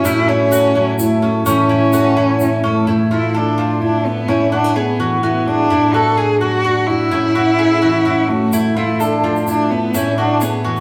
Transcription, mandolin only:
0.05 C#4
0.29 E4
0.52 F#4
0.75 E4
1.22 C#4
1.46 C#4
1.69 E4
1.93 F#4
2.17 E4
2.64 C#4
2.87 E4
3.11 F4
3.34 A4
3.58 F4
4.28 E4
4.52 F#4
4.76 G#4
5.00 F#4
5.23 F#4
5.70 E4
5.94 F#4
6.18 G#4
6.41 F#4
6.64 F#4
7.11 E4
7.35 F#4
7.59 G#4
7.82 F#4
8.05 F#4
8.53 E4
8.76 F4
9.00 A4
9.24 F4
9.94 E4
10.18 F#4
10.41 G#4
10.64 F#4

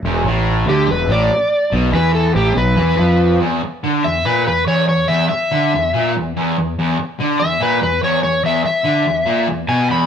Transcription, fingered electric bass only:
0.02 E1
0.24 A1
0.66 D2
0.88 E1
1.07 A1
1.72 B1
1.92 E2
2.34 A1
2.56 B1
2.77 E2
2.98 F2

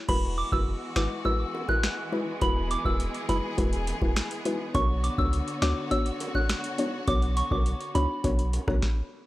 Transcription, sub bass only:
0.09 E1
0.52 F#1
0.96 G#1
2.42 E1
2.85 E1
3.29 F#1
3.58 E1
4.02 E1
4.75 B1
5.18 C#2
5.62 D2
7.08 B1
7.51 B1
7.95 C#2
8.24 B1
8.68 B1

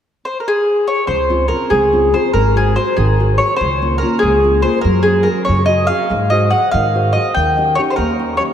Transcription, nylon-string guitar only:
1.08 C#3
1.29 C4 C#4 F4
1.49 C4 C#4 F4
1.71 G#3
1.92 C4 C#4 F4
2.13 C4 C#4 F4
2.34 G#3
2.56 F#4 G#4 C5
2.76 F#4 G#4 C5
2.97 D#3
3.20 F#4 G#4 C5
3.39 F#4 G#4 C5
3.61 C#3
3.82 A#3 C#4 F4
4.01 A#3 C#4 F4
4.22 G#3
4.44 A#3 C#4 F4
4.64 A#3 C#4 F4
4.85 F#3
5.05 C#4 F#4 G#4
5.26 C#4 F#4 G#4
5.48 C#3
5.68 C#4 F#4 G#4
5.89 C#4 F#4 G#4
6.10 G#3
6.31 F#4 G#4 C5
6.52 F#4 G#4 C5
6.74 D#3
6.95 F#4 G#4 C5
7.15 F#4 G#4 C5
7.36 D#3
7.57 C#4 D#4 G4
7.78 C#4 D#4 G4
7.98 A#3
8.19 C#4 D#4 G4
8.39 C#4 D#4 G4

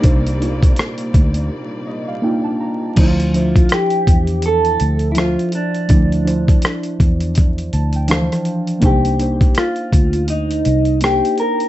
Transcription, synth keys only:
Already playing: D4 D#4 C5
0.00 A#3 D4 D#4
0.05 C5
0.39 A#3 D4 D#4 F4
1.87 D#5
2.08 F5
2.22 A#3 D4 D#4 F4 G5
2.44 A5
2.60 A#5
2.96 F3 D4 E4 C5
3.33 F3 D4 C5 E5
5.15 F3 D4 C5 E5
5.89 F3 D4 E4 D5
6.24 F3 D4 E4 C5
7.73 A5
7.96 G5
8.07 E3 F3 D4 C5 F5
8.80 A#3 D4 D#4 C5
9.19 A#3 D4 D#4 C5
11.02 A#3 D4 D#4 C5

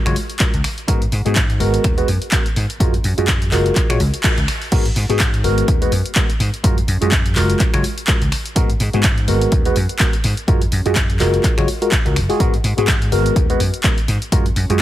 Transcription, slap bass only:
0.06 F#1
0.54 C#2
0.88 G#2
1.12 G#2
1.26 G#2
1.60 G#1
1.84 D#2
2.08 F#2
2.56 G#2
2.80 F#2
3.04 F#2
3.18 F#2
3.52 F#1
3.90 A#2
4.00 C#2
4.38 C#2
4.72 G#2
4.96 G#2
5.10 G#2
5.44 G#1
5.68 D#2
5.92 F#2
6.40 G#2
6.64 F#2
6.88 F#2
7.02 F#2
7.36 F#1
7.74 F#1
8.22 C#2
8.56 G#2
8.80 G#2
8.94 G#2
9.28 G#1
9.52 D#2
9.76 F#2
10.24 G#2
10.48 F#2
10.72 F#2
10.86 F#2
11.20 F#1
11.58 F#1
12.06 C#2
12.16 F#1
12.40 G#2
12.64 G#2
12.78 G#2
13.12 G#1
13.36 D#2
13.60 F#2
14.08 G#2
14.32 F#2
14.56 F#2
14.70 F#2

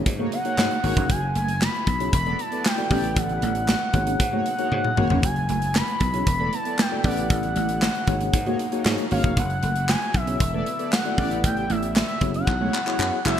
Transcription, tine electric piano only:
Already playing: A#3 D#4 F#4 G#4 C#5
0.19 A#3 D#4 F#4 G#4 C#5
0.45 A#3 D#4 F#4 G#4 C#5
0.58 A#3 D#4 F#4 G#4 C#5
0.83 A#3 D#4 F#4 G#4 C#5
0.96 A#3 D#4 F#4 G#4 C#5
2.00 B3 E4 F#4 G#4 C#5
2.77 B3 E4 F#4 A4 D5
2.90 B3 E4 G4 A4 D5
3.94 A#3 D#4 F#4 G#4 C#5
4.33 A#3 D#4 F#4 G#4 C#5
4.58 A#3 D#4 F#4 G#4 C#5
4.71 A#3 D#4 F#4 G#4 C#5
4.97 A#3 D#4 F#4 G#4 C#5
5.10 A#3 D#4 G#4 C#5
6.13 B3 E4 F#4 G#4 C#5
6.91 B3 E4 F#4 A4 D5
7.04 B3 E4 G4 A4 D5
8.08 A#3 D#4 F#4 G#4 C#5
8.46 A#3 D#4 F#4 G#4 C#5
8.72 A#3 D#4 F#4 G#4 C#5
8.85 A#3 D#4 F#4 G#4 C#5
9.11 A#3 D#4 F#4 G#4 C#5
9.24 A#3 D#4 F#4 G#4 C#5
10.27 B3 E4 F#4 G#4 C#5
11.05 B3 E4 F#4 A4 D5
11.18 B3 E4 G4 A4 D5
12.21 B3 E4 F#4 G#4 C#5
12.60 B3 E4 F#4 G#4 C#5
12.86 B3 E4 F#4 G#4 C#5
12.99 B3 E4 F#4 G#4 C#5
13.25 B3 E4 F#4 G#4 C#5

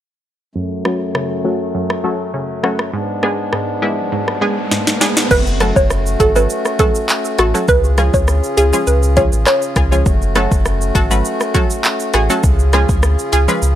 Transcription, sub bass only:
5.31 F#1
5.76 F#1
6.20 G#1
7.39 A1
7.68 C#2
8.14 D2
8.58 C#2
8.87 C#2
9.33 A1
9.76 C#2
10.06 F#1
10.52 F#1
10.95 G#1
12.14 A1
12.44 C#2
12.89 D2
13.33 C#2
13.62 C#2

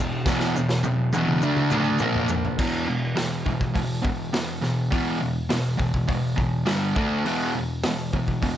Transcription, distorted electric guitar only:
Already playing: E2 B2
0.26 E2 B2 E3
0.56 E2 B2
0.85 E2 B2
1.14 E2 B2 E3
1.43 D3 A3 D4
1.70 D3 A3 D4
2.01 A#2 F3 A#3
2.30 A#2 F3
2.58 E2 B2 E3
2.88 E2 B2
3.16 E2 B2
3.46 E2 B2
3.74 E2 B2
4.03 E2 B2
4.33 E2 B2
4.62 E2 B2
4.91 E2 B2 E3
5.21 E2 B2
5.49 E2 B2
5.78 E2 B2
6.08 E2 B2
6.36 E2 B2
6.65 G2 D3 G3
6.94 D3 A3 D4
7.25 E2 B2 E3
7.55 E2 B2
7.85 E2 B2
8.13 E2 B2
8.42 E2 B2

